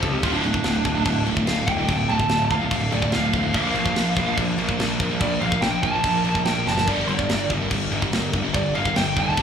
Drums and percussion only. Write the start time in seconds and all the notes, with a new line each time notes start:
0.03 kick, crash
0.23 kick, crash
0.43 crash
0.54 kick
0.64 snare, crash
0.85 kick, crash
1.05 kick, crash
1.27 crash
1.37 kick
1.47 snare, crash
1.68 kick, crash
1.89 kick, crash
2.09 crash
2.20 kick
2.29 snare, crash
2.51 kick, crash
2.71 kick, crash
2.92 crash
3.02 kick
3.12 snare, crash
3.33 kick, crash
3.54 kick, crash
3.75 crash
3.86 kick
3.96 snare, crash
4.17 kick, crash
4.38 kick, crash
4.58 crash
4.69 kick
4.80 snare, crash
5.00 kick, crash
5.21 kick, crash
5.42 crash
5.52 kick
5.62 snare, crash
5.83 kick, crash
6.04 kick, crash
6.25 crash
6.35 kick
6.45 snare, crash
6.67 snare
6.78 snare
6.87 kick, crash
7.09 crash
7.19 kick
7.29 snare, crash
7.50 kick, crash
7.71 kick, crash
7.92 crash
8.02 kick
8.13 snare, crash
8.33 kick, crash
8.54 kick, crash
8.75 crash
8.85 kick
8.96 snare, crash
9.17 kick, crash
9.37 kick, crash